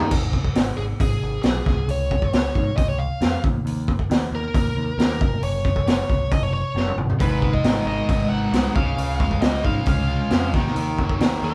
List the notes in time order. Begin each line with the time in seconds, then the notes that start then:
Already playing: D#3 A#3 D#4 A#4 D#5
0.00 floor tom
0.11 G#1, kick, crash
0.33 kick
0.45 kick
0.55 G#1, snare, open hi-hat
0.77 G#1 G#4
1.00 G#1 G#4, kick, open hi-hat
1.23 G#1
1.42 B1 G#4, snare, open hi-hat
1.66 C#2, kick, snare
1.88 C#2 C#5, open hi-hat
2.11 kick
2.22 kick
2.33 C#2 C#5, snare, open hi-hat
2.55 G#2, kick
2.77 C#2 D#5, kick, open hi-hat
2.89 C#5
2.99 F5
3.21 F2, snare, open hi-hat
3.44 D#2, kick
3.65 D#2, open hi-hat
3.88 kick
3.99 kick
4.10 D#2, snare, open hi-hat
4.31 D#2 A#4
4.54 D#2 A#4, kick, open hi-hat
4.76 D#2
4.98 D#2 A#4, snare, open hi-hat
5.21 F#1, kick
5.42 F#1 C#5, open hi-hat
5.65 kick
5.76 kick
5.86 F#1 C#5, snare, open hi-hat
6.09 C#2, kick
6.31 F#1 D#5, kick, open hi-hat
6.43 C#5
6.53 C#5
6.75 F#1, snare
6.87 mid tom
6.96 G1, mid tom
7.10 floor tom
7.19 G#1 G#2 D#3 G#3 B4, kick, open hi-hat
7.41 G#3, kick
7.54 D#5, kick
7.64 G#1 D#3, snare, open hi-hat
7.85 G#1 G#3 D#5
8.08 G#1 B3, kick, open hi-hat
8.30 G#1 D#4 F#5
8.51 C2 G#3, snare, open hi-hat
8.73 C#2 C#3 G#3 C#4 F5, kick
8.97 C#2 C#3, open hi-hat
9.18 G#3 F5, kick
9.31 kick
9.41 C#2 C#3 D#5, snare, open hi-hat
9.63 G#2 G#3 F5, kick
9.85 C#2 C#4 F5, kick, open hi-hat
10.08 F4
10.30 F2 G#3, snare, open hi-hat
10.53 D#2 D#3 A#3 D#4, kick, snare
10.66 snare
10.76 D#2 D#3, open hi-hat
10.98 F#3, kick
11.09 kick
11.19 D#2 D#3, snare, open hi-hat
11.41 D#2 F#3 A#4